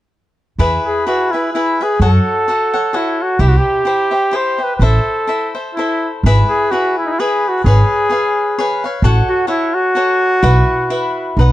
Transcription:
0.58 upright bass E2, cavaquinho E4 G#4 B4 E5
0.86 trumpet G#4
1.06 cavaquinho E4 G#4 B4 E5, trumpet F#4
1.31 trumpet E4, cavaquinho G#4 B4 E5
1.53 trumpet E4, cavaquinho E4 G#4 B4 E5
1.81 cavaquinho G#4 B4 E5, trumpet G#4
2.00 upright bass F#2, cavaquinho F#4 A4 C#5 F#5, trumpet A4
2.48 cavaquinho F#4 A4 C#5 F#5
2.74 cavaquinho A4 C#5 F#5
2.93 trumpet E4, cavaquinho F#4 A4 C#5 F#5
3.22 trumpet F#4
3.39 upright bass C2, cavaquinho E4 G4 C5 E5, trumpet G4
3.49 trumpet F#4
3.57 trumpet G4
3.85 cavaquinho E4 G4 C5 E5
4.11 cavaquinho G4 C5 E5
4.31 cavaquinho E4 G4 C5 E5
4.36 trumpet C5
4.58 cavaquinho G4 C5 E5
4.64 trumpet B4
4.76 upright bass A1, trumpet B4
4.81 cavaquinho E4 A4 C5 E5, trumpet A4
5.27 cavaquinho E4 A4 C5 E5
5.55 cavaquinho A4 C5 E5
5.74 trumpet E4, cavaquinho E4
5.79 cavaquinho A4 C5 E5
6.23 upright bass G#1, cavaquinho E4 G#4 B4 E5
6.49 trumpet G#4
6.71 cavaquinho E4 G#4 B4 E5, trumpet F#4
6.98 trumpet E4
7.06 trumpet D#4 E4
7.19 cavaquinho E4 G#4 B4 E5, trumpet G#4
7.49 trumpet F#4
7.64 upright bass G#1, trumpet G#4, cavaquinho G#4 B4 C#5 F5
8.09 cavaquinho G#4 B4 C#5 F5
8.59 cavaquinho G#4 B4 C#5 F5
8.84 cavaquinho B4 C#5 F5
9.02 upright bass A1, cavaquinho F#4 A4 C#5 F#5
9.29 trumpet F#4
9.47 trumpet E4, cavaquinho F#4 A4 C#5 F#5
9.74 trumpet F#4
9.95 cavaquinho F#4 A4 C#5 F#5
10.43 upright bass B1, cavaquinho E4 B4 E5 F#5
10.90 cavaquinho E4 B4 E5 F#5
11.37 upright bass B1, cavaquinho D#4 B4 D#5
11.41 cavaquinho F#5

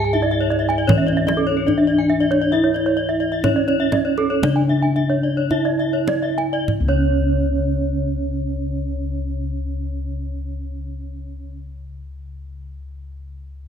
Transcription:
Already playing: bronze metallophone G#4, kettle gongs G#4
0.04 bronze metallophone A5
0.13 kettle gongs D4, bronze metallophone E4 E5, kendang slap
0.22 bronze metallophone D5
0.31 bronze metallophone E5
0.41 bronze metallophone C#5
0.50 bronze metallophone D5, kendang slap
0.59 bronze metallophone E5
0.69 bronze metallophone G#5, kendang slap
0.78 bronze metallophone D5
0.88 kettle gongs E3, bronze metallophone C#4 C#5, kendang slap, kendang high, kendang low
0.98 bronze metallophone E5
1.07 bronze metallophone D5, kendang slap
1.17 bronze metallophone E5
1.27 bronze metallophone D5, kendang slap, kendang high
1.37 bronze metallophone A4
1.47 bronze metallophone C#5
1.57 bronze metallophone A4
1.67 bronze metallophone D4 D5, kettle gongs D4, kendang low
1.78 bronze metallophone E5
1.87 bronze metallophone D5
1.98 bronze metallophone G#5
2.10 bronze metallophone E5
2.20 bronze metallophone D5
2.31 bronze metallophone C#5, kendang slap
2.42 bronze metallophone D5
2.52 kettle gongs E4, bronze metallophone E4 E5
2.64 bronze metallophone C#5
2.74 bronze metallophone D5, kendang slap
2.86 bronze metallophone C#5
2.97 bronze metallophone D5
3.09 bronze metallophone E5
3.20 bronze metallophone D5
3.32 bronze metallophone E5
3.44 bronze metallophone C#4 C#5, kettle gongs D4, kendang slap, kendang high, kendang low
3.56 bronze metallophone D5
3.68 bronze metallophone C#5, kendang slap
3.80 bronze metallophone E5
3.92 bronze metallophone D5, kendang slap, kendang high, kendang low
4.05 bronze metallophone C#5
4.18 bronze metallophone A4, kendang slap
4.30 bronze metallophone C#5
4.42 kettle gongs C#3, bronze metallophone D4 D5, kendang slap, kendang low
4.56 bronze metallophone G#5
4.69 bronze metallophone E5
4.82 bronze metallophone G#5
4.96 bronze metallophone E5, kendang slap
5.10 bronze metallophone C#5
5.23 bronze metallophone D5
5.37 bronze metallophone C#5
5.50 kettle gongs D4, bronze metallophone E4 E5, kendang low
5.65 bronze metallophone D5
5.79 bronze metallophone E5
5.93 bronze metallophone C#5
6.08 bronze metallophone D5, kendang slap, kendang high
6.22 bronze metallophone E5
6.38 bronze metallophone G#5, kendang slap
6.53 bronze metallophone D5
6.68 kendang low
6.80 kettle gongs C#2
6.88 bronze metallophone C#4 C#5

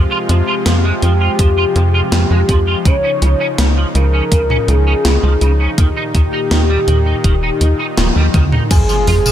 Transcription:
Already playing: supersaw synth C3 F3 G#3 F4, soft synth lead G4
0.11 clean electric guitar F4
0.29 analog synth bass F2, clean electric guitar F3, closed hi-hat
0.48 clean electric guitar F4
0.66 analog synth bass F2, clean electric guitar F3, snare, closed hi-hat
0.84 clean electric guitar G#3
1.02 analog synth bass F2, clean electric guitar F3, closed hi-hat
1.21 clean electric guitar F4
1.39 analog synth bass F2, clean electric guitar F3, kick, closed hi-hat
1.58 clean electric guitar F4
1.76 analog synth bass F2, clean electric guitar F3, closed hi-hat
1.94 clean electric guitar F4
2.12 analog synth bass F2, clean electric guitar F3, snare, closed hi-hat
2.31 analog synth bass F2, clean electric guitar G#3
2.49 analog synth bass F2, clean electric guitar F3, kick, closed hi-hat
2.67 clean electric guitar F4
2.85 analog synth bass C#2, supersaw synth C#3 D#4, clean electric guitar C#3, soft synth lead C#5, kick, closed hi-hat
3.04 clean electric guitar C#4
3.22 analog synth bass C#2, clean electric guitar C#3, closed hi-hat
3.40 clean electric guitar C#4
3.58 analog synth bass C#2, clean electric guitar C#3, snare, closed hi-hat
3.77 clean electric guitar F3
3.95 analog synth bass C#2, clean electric guitar C#3, soft synth lead A#4, closed hi-hat
4.14 clean electric guitar C#4
4.32 analog synth bass C#2, clean electric guitar C#3, kick, closed hi-hat
4.50 clean electric guitar C#4, mid tom
4.68 analog synth bass C#2, clean electric guitar C#3, soft synth lead G#4, closed hi-hat
4.87 clean electric guitar C#4
5.05 analog synth bass C#2, clean electric guitar C#3, snare, closed hi-hat
5.23 analog synth bass C#2, clean electric guitar F3
5.41 analog synth bass C#2, clean electric guitar C#3, closed hi-hat
5.60 clean electric guitar C#4
5.78 analog synth bass D#2, supersaw synth A#2 D#3, clean electric guitar D#3, soft synth lead G4, kick, closed hi-hat
5.96 clean electric guitar D#4
6.15 analog synth bass D#2, clean electric guitar D#3, kick, closed hi-hat
6.33 clean electric guitar D#4
6.51 analog synth bass D#2, clean electric guitar D#3, snare, closed hi-hat
6.70 clean electric guitar G3
6.88 analog synth bass D#2, clean electric guitar D#3, closed hi-hat, mid tom
7.06 clean electric guitar D#4
7.24 analog synth bass D#1, clean electric guitar D#3, kick, closed hi-hat
7.43 clean electric guitar D#4
7.61 analog synth bass D#2, clean electric guitar D#3, closed hi-hat
7.79 clean electric guitar D#4
7.97 analog synth bass D#1, clean electric guitar D#3, snare, closed hi-hat, high tom
8.16 analog synth bass D#2, clean electric guitar G3, high tom
8.34 analog synth bass D#2, clean electric guitar D#3, kick, closed hi-hat, mid tom
8.52 clean electric guitar D#4, mid tom
8.70 analog synth bass F2, supersaw synth C3 F3 G#3 F4, clean electric guitar F3, soft synth lead G#4, fm electric piano G#4, kick, closed hi-hat, crash, tambourine, impact
8.89 clean electric guitar F3, tambourine
9.07 analog synth bass F2, clean electric guitar F4, open hi-hat
9.26 clean electric guitar F3, mid tom, tambourine

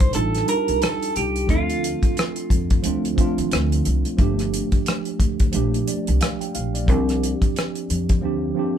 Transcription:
Already playing: tine electric piano G3 D4 D#4 F4 A4, clean electric guitar C5
0.00 kick, closed hi-hat
0.12 upright bass A1, tine electric piano G3 D4 D#4 F4, clean electric guitar A4, closed hi-hat
0.17 tine electric piano A4
0.35 cross-stick, closed hi-hat
0.46 tine electric piano G3 D4 D#4 F4, clean electric guitar A#4, closed hi-hat
0.50 tine electric piano G4
0.57 tine electric piano A5
0.68 upright bass C2, closed hi-hat
0.82 clean electric guitar A4, cross-stick, closed hi-hat
1.03 closed hi-hat
1.16 upright bass C2, clean electric guitar G4, closed hi-hat
1.36 closed hi-hat
1.46 upright bass D2, tine electric piano F3 A3 C4 D4, clean electric guitar F4, kick, closed hi-hat
1.51 tine electric piano A4
1.70 closed hi-hat
1.84 closed hi-hat
2.03 muted upright bass stroke, kick, closed hi-hat
2.17 cross-stick, closed hi-hat
2.36 closed hi-hat
2.50 upright bass F2, kick, closed hi-hat
2.70 kick, closed hi-hat
2.83 upright bass D2, tine electric piano F3 A3 C4 D4, closed hi-hat
2.87 tine electric piano F4
3.05 closed hi-hat
3.16 tine electric piano F3 A3 C4 D4, kick, closed hi-hat
3.21 tine electric piano F4
3.38 upright bass D#2, closed hi-hat
3.51 upright bass D2, cross-stick, closed hi-hat
3.72 closed hi-hat
3.85 upright bass C2, closed hi-hat
4.05 closed hi-hat
4.17 upright bass G1, tine electric piano F3 A3 A#3 D4, kick, closed hi-hat
4.21 tine electric piano G4
4.39 cross-stick, closed hi-hat
4.54 closed hi-hat
4.72 muted upright bass stroke, kick, closed hi-hat
4.86 cross-stick, closed hi-hat
5.05 closed hi-hat
5.20 upright bass D2, kick, closed hi-hat
5.40 kick, closed hi-hat
5.52 upright bass A#1, tine electric piano F3 A3 A#3 D4, closed hi-hat
5.56 tine electric piano G4
5.74 closed hi-hat
5.88 tine electric piano D5, closed hi-hat
6.07 upright bass C2, closed hi-hat
6.21 tine electric piano F5, cross-stick, closed hi-hat
6.41 tine electric piano G5, closed hi-hat
6.55 upright bass A#1, tine electric piano F5, closed hi-hat
6.74 tine electric piano D5, closed hi-hat
6.86 upright bass C2, tine electric piano D#3 A#3 C4 D4, kick, closed hi-hat
6.90 tine electric piano F3 G4
7.09 cross-stick, closed hi-hat
7.23 closed hi-hat
7.42 muted upright bass stroke, kick, closed hi-hat
7.56 cross-stick, closed hi-hat
7.75 closed hi-hat
7.90 upright bass F2, closed hi-hat
8.09 kick, closed hi-hat
8.21 upright bass D2, tine electric piano F3 A#3 C4 D4
8.25 tine electric piano G4
8.55 tine electric piano F3 A#3 C4 D4
8.59 tine electric piano G4

